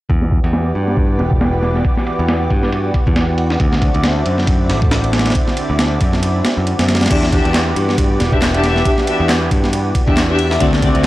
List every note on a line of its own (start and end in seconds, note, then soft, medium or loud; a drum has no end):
0.09 0.39 E2 medium
0.09 3.57 E3 medium
0.09 3.57 B3 medium
0.09 7.06 F#4 medium
0.09 3.57 G4 medium
0.09 3.57 D5 medium
0.09 kick loud
0.09 ride medium
0.22 snare medium
0.31 kick medium
0.31 ride medium
0.44 0.71 E2 loud
0.44 ride soft
0.53 snare loud
0.53 ride medium
0.75 1.21 G2 medium
0.75 ride medium
0.88 snare soft
0.97 kick loud
0.97 ride medium
1.19 1.81 E1 medium
1.19 snare soft
1.19 ride medium
1.32 kick medium
1.41 snare loud
1.41 ride medium
1.53 ride soft
1.63 snare soft
1.63 ride medium
1.75 snare soft
1.85 kick loud
1.85 ride medium
1.97 snare soft
2.07 ride medium
2.19 2.46 E2 loud
2.28 snare loud
2.28 ride medium
2.50 2.90 G2 medium
2.50 kick medium
2.50 ride medium
2.63 snare soft
2.72 ride medium
2.94 kick medium
2.94 ride medium
3.07 3.56 E2 loud
3.07 kick medium
3.16 snare loud
3.16 ride medium
3.38 ride medium
3.50 snare medium
3.60 3.89 D2 medium
3.60 7.07 D3 medium
3.60 7.07 C4 medium
3.60 7.07 E4 medium
3.60 7.07 D5 medium
3.60 kick loud
3.60 ride medium
3.73 snare medium
3.82 kick loud
3.82 ride medium
3.94 4.22 D2 loud
3.94 ride soft
4.04 snare loud
4.04 ride medium
4.26 4.71 F#2 medium
4.26 ride medium
4.38 snare soft
4.47 kick loud
4.47 ride medium
4.70 5.31 A1 medium
4.70 snare soft
4.70 ride medium
4.82 kick medium
4.91 snare loud
4.91 ride medium
5.04 ride soft
5.13 snare medium
5.13 ride medium
5.19 snare medium
5.19 ride medium
5.26 snare medium
5.26 ride medium
5.30 snare medium
5.30 ride medium
5.35 kick loud
5.35 ride medium
5.48 snare soft
5.57 ride medium
5.70 5.97 D2 loud
5.79 snare loud
5.79 ride medium
6.01 6.41 F#2 medium
6.01 kick medium
6.01 ride medium
6.13 snare soft
6.23 ride medium
6.45 snare loud
6.45 ride medium
6.57 6.72 F#2 medium
6.67 ride medium
6.79 7.06 F#2 loud
6.79 snare loud
6.79 ride medium
6.89 snare medium
6.89 ride medium
6.95 snare medium
6.95 ride medium
7.01 snare medium
7.01 ride medium
7.06 snare medium
7.06 ride medium
7.10 7.39 E2 loud
7.10 10.57 E3 medium
7.10 10.57 B3 medium
7.10 7.24 D4 medium
7.10 10.57 F#4 medium
7.10 7.24 G4 medium
7.10 10.57 G4 medium
7.10 10.57 D5 medium
7.10 7.23 E5 medium
7.10 kick loud
7.10 crash loud
7.10 ride medium
7.23 snare medium
7.32 7.45 D4 medium
7.32 7.45 G4 medium
7.32 7.45 E5 medium
7.32 kick loud
7.32 ride medium
7.45 7.72 E2 loud
7.45 ride soft
7.54 snare loud
7.54 clap loud
7.54 ride medium
7.76 8.21 G2 medium
7.76 ride medium
7.89 snare soft
7.98 kick loud
7.98 ride medium
8.20 8.82 E1 medium
8.20 snare medium
8.20 ride medium
8.32 8.43 D4 medium
8.32 8.43 G4 medium
8.32 8.43 E5 medium
8.32 kick loud
8.42 snare loud
8.42 clap loud
8.42 ride medium
8.54 8.72 D4 medium
8.54 8.72 G4 medium
8.54 8.72 E5 loud
8.54 ride soft
8.64 snare soft
8.64 ride medium
8.76 snare soft
8.85 8.99 D4 medium
8.85 8.99 G4 medium
8.85 8.99 E5 medium
8.85 kick loud
8.85 ride medium
8.98 snare soft
9.07 9.21 D4 medium
9.07 9.21 G4 medium
9.07 9.21 E5 medium
9.07 ride medium
9.20 9.47 E2 loud
9.29 snare loud
9.29 clap loud
9.29 ride medium
9.51 9.91 G2 medium
9.51 kick medium
9.51 ride medium
9.64 snare soft
9.73 ride medium
9.95 kick medium
9.95 ride medium
10.07 10.57 E2 loud
10.07 10.18 D4 medium
10.07 10.18 G4 medium
10.07 10.18 E5 medium
10.07 kick loud
10.17 snare loud
10.17 clap loud
10.17 ride medium
10.29 10.48 D4 loud
10.29 10.48 G4 medium
10.29 10.48 E5 loud
10.39 ride medium
10.51 snare medium
10.60 10.90 D2 medium
10.60 10.70 D3 medium
10.60 11.07 D3 medium
10.60 10.74 C4 medium
10.60 11.07 C4 medium
10.60 11.07 E4 medium
10.60 10.74 F#4 medium
10.60 11.07 F#4 medium
10.60 10.74 D5 medium
10.60 11.07 D5 medium
10.60 kick loud
10.60 ride medium
10.73 11.07 D3 medium
10.73 snare medium
10.82 10.96 C4 medium
10.82 10.96 F#4 medium
10.82 10.96 D5 medium
10.82 kick loud
10.82 ride medium
10.95 11.07 D2 loud
10.95 ride soft